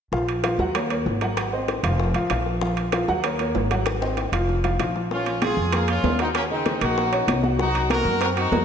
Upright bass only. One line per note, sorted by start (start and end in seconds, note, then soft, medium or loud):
0.12 0.56 A#1 medium
0.59 1.02 D#2 medium
1.06 1.78 G#1 medium
1.83 2.13 F1 medium
2.15 2.29 A1 medium
2.30 3.03 A#1 medium
3.08 3.52 D#2 loud
3.55 4.28 G#1 medium
4.32 4.76 F1 medium
4.79 5.52 A#1 medium
5.57 6.00 F2 medium
6.04 6.76 D#2 medium
6.81 7.25 A#1 medium
7.28 8.00 C2 medium
8.05 8.48 F#2 medium
8.52 8.65 F2 medium